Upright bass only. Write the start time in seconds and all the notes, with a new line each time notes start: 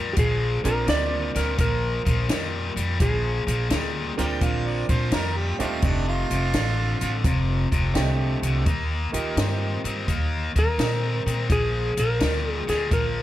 Already playing: F2
0.17 A#1
0.64 A#1
0.87 D2
1.36 D2
1.59 A#1
2.07 A#1
2.29 F2
2.76 F2
3.00 A#1
3.47 A#1
3.70 D2
4.18 D2
4.42 A#1
4.89 A#1
5.11 F2
5.60 D#2
5.83 F1
6.31 F1
6.54 A1
7.01 A1
7.24 F1
7.72 F1
7.95 C2
8.42 C2
8.66 D#2
9.13 D#2
9.37 G2
9.84 G2
10.08 D#2
10.56 D#2
10.78 A#2
11.26 A#2
11.50 A#1
11.97 A#1
12.21 D2
12.68 D2
12.91 A#1